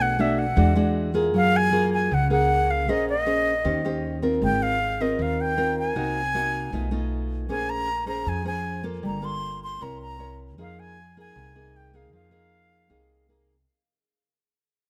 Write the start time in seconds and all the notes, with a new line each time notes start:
Already playing: B1 B2 A3 D4 F#4
0.02 F#5
0.19 A3 D4 F#4 E5
0.39 F#5
0.56 E2 E3 G#3 D4 F#4
0.75 G#3 D4 F#4
1.14 A#3 F4 G#4
1.33 F#2 F#3 F5
1.56 G#5
1.72 A#3 F4 G#4
1.94 G#5
2.11 C#2 C#3 F#5
2.30 A#3 G#4 F#5
2.71 F5
2.88 A#1 A#3 C#4 G#4 C5 D#5
3.09 D#5
3.26 C#4 G#4 C5
3.64 D#2 D#3 C#4 G4 C5
3.85 C#4 G4 C5
4.22 C4 F4 A#4
4.42 G#1 G#3 G5
4.63 F5
5.00 C4 F4 A#4 D#5
5.19 D#2 D#3 F5
5.41 G5
5.57 C4 F4 A#4
5.79 G#5
5.95 C2 C3 A#3 D#4 F#4
6.34 A#3 D#4 F#4
6.72 B1 B2 A3 D#4 F4
6.91 A3 D#4 F4
7.49 A#1 A#3 C#4 G#4 C5 G#5
7.70 A#5
8.06 C#4 G#4 C5 A#5
8.26 F2 F3 G#5
8.45 C#4 G#4 C5 G#5
8.83 A#3 F4 A4
9.03 G1 G3 A#5
9.22 A#3 F4 A4 C6
9.63 C6
9.81 C2 C4 E4 A#4 C#5 A#5
10.02 A#5
10.19 E4 A#4 C#5
10.58 F2 F3 A#3 D#4 G#4 F5
10.80 G#5
11.17 A#3 D#4 G#4 G#5
11.35 C2 C3
11.55 A#3 D#4 G#4
11.76 G5
11.93 A#3 D#4 G#4 F5
12.13 F2 F3 F5
12.31 A#3 D#4 G#4
12.90 C2 C3 A#3 D#4 G#4
13.29 A#3 D#4 G#4